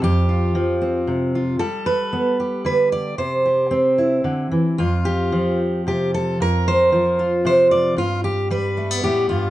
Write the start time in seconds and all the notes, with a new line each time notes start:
Already playing: F3
0.02 F2 G4
0.29 F4
0.55 F3
0.82 C4
1.07 C3
1.35 F4
1.59 G3 A4
1.86 B4
2.13 B3
2.40 G4
2.65 D3 B4
2.92 D5
3.18 C3 C5
3.45 G4
3.71 C4
3.98 E4
4.24 D3
4.52 E3
4.78 F2 F4
5.05 G4
5.32 F3
5.87 C3 G4
6.14 A4
6.40 F2 A#4
6.68 C5
6.92 F3
7.19 F4
7.45 C3 C5
7.71 D5
7.96 G2 F4
8.24 G4
8.51 G3 B4
8.77 A3
8.91 B3
9.04 A2 G4
9.29 G2 F4